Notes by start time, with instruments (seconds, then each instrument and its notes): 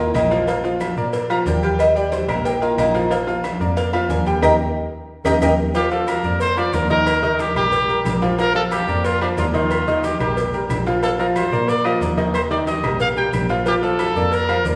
Already playing: double bass D#2
0.00 upright piano A#3 A#4 D#5, cuban tres F4
0.14 double bass A#1, cuban tres A#3 D#4, cowbell, high conga, low timbale, low agogo, claves, maracas
0.31 upright piano F3 F4 F5, cowbell, high conga, maracas
0.48 upright piano F3 F4 F5, cowbell, high conga, low agogo, maracas
0.64 upright piano F3 F4 F5, high conga, maracas
0.80 cowbell, high conga, low agogo, claves, maracas
0.96 double bass A#2, upright piano A#3 A#4 D5, high conga, maracas
1.13 cowbell, high conga, low agogo, maracas
1.30 upright piano F3 F4 F5, cuban tres A#5, high conga, low agogo, claves, maracas
1.46 double bass D#2, upright piano A#3 A#4 D5, cuban tres G5, cowbell, high conga, maracas
1.63 upright piano G3 G4 G5, cuban tres F5, cowbell, high conga, maracas
1.79 cuban tres D#5, cowbell, high conga, low agogo, claves, maracas
1.95 upright piano G3 G4 G5, cuban tres D5, high conga, maracas
2.12 cuban tres C5, cowbell, high conga, low agogo, maracas
2.28 double bass A#1, upright piano A#3 A#4 D#5, cuban tres A#4, cowbell, high conga, low conga, low agogo, claves, maracas
2.45 cuban tres G4, cowbell, high conga, maracas
2.61 upright piano A#3 A#4 D#5, cuban tres F4, high conga, maracas
2.77 double bass A#1, cuban tres A#3 D#4, cowbell, high conga, low agogo, claves, maracas
2.94 upright piano F3 F4 F5, cowbell, high conga, maracas
3.10 upright piano F3 F4 F5, cowbell, high conga, low agogo, maracas
3.27 upright piano F3 F4 F5, high conga, maracas
3.44 cowbell, high conga, low agogo, claves, maracas
3.60 double bass F2, upright piano A#3 A#4 D5, high conga, maracas
3.77 cuban tres F5, cowbell, high conga, low agogo, maracas
3.93 upright piano F3 F4 F5, cuban tres F5, high conga, low agogo, claves, maracas
4.09 double bass D#2, upright piano A#3 A#4 D5, cuban tres G#5, cowbell, high conga, maracas
4.26 upright piano G3 G4 G5, cowbell, high conga, maracas
4.42 double bass D#2, upright piano D#4 G4 A#4, cuban tres A#4 D#5 G5, cowbell, high conga, high timbale, claves, maracas
5.25 double bass D#2, upright piano D#4 G4 A#4, cuban tres A#4 D#5 G5, cowbell, high conga, high timbale, claves, maracas
5.41 double bass D#2, upright piano D#4 G4 A#4, cuban tres A#4 D#5 G5, cowbell, high conga, high timbale, claves, maracas
5.75 upright piano F3 F4 F5, trumpet G4, cowbell, high conga, low agogo, maracas
5.91 upright piano F3 F4 F5, trumpet A4, high conga, maracas
6.08 trumpet A#4, cowbell, high conga, low agogo, claves, maracas
6.23 double bass F2, upright piano A#3 A#4 D5, high conga, maracas
6.40 trumpet C5, cowbell, high conga, low agogo, maracas
6.57 upright piano F3 F4 F5, trumpet D5, high conga, low agogo, claves, maracas
6.73 double bass D#2, upright piano A#3 A#4 D5, trumpet A#4, cowbell, high conga, low timbale, maracas
6.90 upright piano D#3 D#4 D#5, trumpet A#4, cowbell, high conga, maracas
7.06 cowbell, high conga, low agogo, claves, maracas
7.23 upright piano D#3 D#4 D#5, high conga, maracas
7.39 trumpet G4, cowbell, high conga, low agogo, maracas
7.55 double bass A#1, upright piano G3 G4 A#4, trumpet G4, cowbell, high conga, low conga, low agogo, claves, maracas
7.72 cowbell, high conga, low conga, maracas
7.89 upright piano G3 G4 A#4, high conga, maracas
8.05 double bass A#1, cowbell, high conga, low timbale, low agogo, claves, maracas
8.22 upright piano F3 F4 F5, cowbell, high conga, maracas
8.38 upright piano F3 F4 F5, trumpet A#4, cowbell, high conga, low agogo, maracas
8.55 upright piano F3 F4 F5, trumpet A4, high conga, maracas
8.71 trumpet G4, cowbell, high conga, low agogo, claves, maracas
8.87 double bass F2, upright piano A#3 A#4 D5, high conga, maracas
9.04 trumpet F4, cowbell, high conga, low agogo, maracas
9.21 upright piano F3 F4 F5, trumpet D4, high conga, low agogo, claves, maracas
9.37 double bass D#2, upright piano A#3 A#4 D5, trumpet F4, cowbell, high conga, low timbale, maracas
9.54 upright piano D#3 D#4 D#5, trumpet F4, cowbell, high conga, maracas
9.71 cowbell, high conga, low agogo, claves, maracas
9.87 upright piano D#3 D#4 D#5, high conga, maracas
10.04 trumpet G4, cowbell, high conga, low agogo, maracas
10.20 double bass A#1, upright piano G3 G4 A#4, trumpet G4, cowbell, high conga, low conga, low agogo, claves, maracas
10.37 cowbell, high conga, low conga, maracas
10.53 upright piano G3 G4 A#4, high conga, maracas
10.70 double bass A#1, cowbell, high conga, low timbale, low agogo, claves, maracas
10.86 upright piano F3 F4 F5, cowbell, maracas
11.03 upright piano F3 F4 F5, trumpet A4, cowbell, high conga, low agogo, maracas
11.19 upright piano F3 F4 F5, trumpet A#4, high conga, maracas
11.36 trumpet C5, cowbell, high conga, low agogo, claves, maracas
11.52 double bass A#2, upright piano A#3 A#4 D5, high conga, maracas
11.68 trumpet D5, cowbell, high conga, low agogo, maracas
11.84 upright piano F3 F4 F5, trumpet D#5, high conga, low agogo, claves, maracas
12.01 double bass D#2, upright piano A#3 A#4 D5, cowbell, high conga, maracas
12.17 upright piano D#3 D#4 D#5, cowbell, high conga, maracas
12.34 trumpet C5, cowbell, high conga, low agogo, claves, maracas
12.50 upright piano D#3 D#4 D#5, trumpet D5, high conga, maracas
12.67 trumpet D#5, cowbell, high conga, low agogo, maracas
12.83 double bass A#1, upright piano G3 G4 A#4, cowbell, high conga, low conga, low agogo, claves, maracas
13.00 trumpet F5, cowbell, high conga, low conga, maracas
13.16 upright piano G3 G4 A#4, trumpet G5, high conga, maracas
13.33 double bass A#1, cowbell, high conga, low agogo, claves, maracas
13.49 upright piano F3 F4 F5, cowbell, maracas
13.66 upright piano F3 F4 F5, trumpet G4, cowbell, high conga, low agogo, maracas
13.82 upright piano F3 F4 F5, trumpet A4, high conga, maracas
13.99 cowbell, high conga, low agogo, claves, maracas
14.15 double bass F2, upright piano A#3 A#4 D5, high conga, maracas
14.32 trumpet A#4, cowbell, high conga, low agogo, maracas
14.49 upright piano F3 F4 F5, high conga, low agogo, claves, maracas
14.65 double bass D#2, upright piano A#3 A#4 D5, cowbell, high conga, maracas